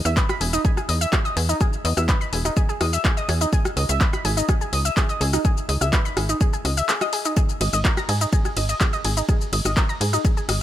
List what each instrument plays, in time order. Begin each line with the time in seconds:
0.05 analog synth bass E2, synth arpeggio sound E5 E6, shaker
0.17 synth arpeggio sound B4 B5, kick, clap, shaker
0.29 synth arpeggio sound B5, cross-stick, shaker
0.41 analog synth bass E1, synth arpeggio sound G#4 G#5, open hi-hat
0.53 synth arpeggio sound D#4 D#5, shaker
0.65 synth arpeggio sound G#4 G#5, kick, shaker
0.77 synth arpeggio sound G#4 G#5, cross-stick, shaker
0.89 analog synth bass E2, synth arpeggio sound D#5 D#6, open hi-hat
1.01 synth arpeggio sound E5 E6, shaker
1.13 synth arpeggio sound G#4 G#5, kick, cross-stick, clap, shaker
1.25 synth arpeggio sound D#5 D#6, shaker
1.37 analog synth bass E2, synth arpeggio sound G#4 G#5, open hi-hat
1.49 synth arpeggio sound D#4 D#5, shaker
1.61 synth arpeggio sound G#4 G#5, kick, cross-stick, shaker
1.73 shaker
1.85 analog synth bass E2, synth arpeggio sound D#5 D#6, open hi-hat
1.97 analog synth bass E2, synth arpeggio sound E5 E6, cross-stick, shaker
2.09 synth arpeggio sound B4 B5, kick, clap, shaker
2.21 synth arpeggio sound B5, shaker
2.33 analog synth bass E1, synth arpeggio sound G#4 G#5, open hi-hat
2.45 synth arpeggio sound D#4 D#5, cross-stick, shaker
2.57 synth arpeggio sound G#4 G#5, kick, shaker
2.69 synth arpeggio sound G#4 G#5, shaker
2.81 analog synth bass E2, synth arpeggio sound D#5 D#6, cross-stick, open hi-hat
2.93 synth arpeggio sound E5 E6, shaker
3.05 synth arpeggio sound G#4 G#5, kick, clap, shaker
3.17 synth arpeggio sound D#5 D#6, shaker
3.29 analog synth bass E2, synth arpeggio sound G#4 G#5, cross-stick, open hi-hat
3.41 synth arpeggio sound D#4 D#5, shaker
3.53 synth arpeggio sound G#4 G#5, kick, shaker
3.65 cross-stick, shaker
3.77 analog synth bass C#2, synth arpeggio sound D#5 D#6, open hi-hat
3.89 analog synth bass C#2, synth arpeggio sound E5 E6, shaker
4.01 synth arpeggio sound B4 B5, kick, clap, shaker
4.13 synth arpeggio sound B5, cross-stick, shaker
4.25 analog synth bass G#1, synth arpeggio sound G#4 G#5, open hi-hat
4.37 synth arpeggio sound D#4 D#5, shaker
4.49 synth arpeggio sound G#4 G#5, kick, cross-stick, shaker
4.61 synth arpeggio sound G#4 G#5, shaker
4.73 analog synth bass C#2, synth arpeggio sound D#5 D#6, open hi-hat
4.85 synth arpeggio sound E5 E6, shaker
4.97 synth arpeggio sound G#4 G#5, kick, cross-stick, clap, shaker
5.09 synth arpeggio sound D#5 D#6, shaker
5.21 analog synth bass C#2, synth arpeggio sound G#4 G#5, open hi-hat
5.33 synth arpeggio sound D#4 D#5, cross-stick, shaker
5.45 synth arpeggio sound G#4 G#5, kick, shaker
5.57 shaker
5.69 analog synth bass C#2, synth arpeggio sound D#5 D#6, open hi-hat
5.81 analog synth bass C#2, synth arpeggio sound E5 E6, cross-stick, shaker
5.93 synth arpeggio sound B4 B5, kick, clap, shaker
6.05 synth arpeggio sound B5, shaker
6.17 analog synth bass G#1, synth arpeggio sound G#4 G#5, cross-stick, open hi-hat
6.29 synth arpeggio sound D#4 D#5, shaker
6.41 synth arpeggio sound G#4 G#5, kick, shaker
6.53 synth arpeggio sound G#4 G#5, shaker
6.65 analog synth bass C#2, synth arpeggio sound D#5 D#6, cross-stick, open hi-hat
6.77 synth arpeggio sound E5 E6, shaker
6.89 synth arpeggio sound G#4 G#5, clap, shaker
7.01 synth arpeggio sound D#5 D#6, cross-stick, shaker
7.13 synth arpeggio sound G#4 G#5, open hi-hat
7.25 synth arpeggio sound D#4 D#5, shaker
7.37 synth arpeggio sound G#4 G#5, kick, shaker
7.49 shaker
7.61 analog synth bass G#1, synth arpeggio sound D#5 D#6, cross-stick, open hi-hat, ride
7.73 analog synth bass G#1, synth arpeggio sound D#5 D#6, shaker
7.85 synth arpeggio sound A#4 A#5, kick, clap, shaker
7.97 synth arpeggio sound A#5 A#6, cross-stick, shaker
8.09 analog synth bass G#2, synth arpeggio sound G#4 G#5, open hi-hat, ride
8.21 synth arpeggio sound D#4 D#5, shaker
8.33 synth arpeggio sound G#4 G#5, kick, shaker
8.45 synth arpeggio sound G#4 G#5, cross-stick, shaker
8.57 analog synth bass G#1, synth arpeggio sound D#5 D#6, open hi-hat, ride
8.69 synth arpeggio sound D#5 D#6, shaker
8.81 synth arpeggio sound G#4 G#5, kick, cross-stick, clap, shaker
8.93 synth arpeggio sound D#5 D#6, shaker
9.05 analog synth bass G#1, synth arpeggio sound G#4 G#5, open hi-hat, ride
9.17 synth arpeggio sound D#4 D#5, shaker
9.29 synth arpeggio sound G#4 G#5, kick, cross-stick, shaker
9.41 shaker
9.53 analog synth bass G#1, synth arpeggio sound D#5 D#6, open hi-hat, ride
9.65 analog synth bass G#1, synth arpeggio sound D#5 D#6, cross-stick, shaker
9.77 synth arpeggio sound A#4 A#5, kick, clap, shaker
9.89 synth arpeggio sound A#5 A#6, shaker
10.01 analog synth bass G#2, synth arpeggio sound G#4 G#5, open hi-hat, ride
10.13 synth arpeggio sound D#4 D#5, cross-stick, shaker
10.25 synth arpeggio sound G#4 G#5, kick, shaker
10.37 synth arpeggio sound G#4 G#5, shaker
10.49 analog synth bass G#1, synth arpeggio sound D#5 D#6, cross-stick, open hi-hat, ride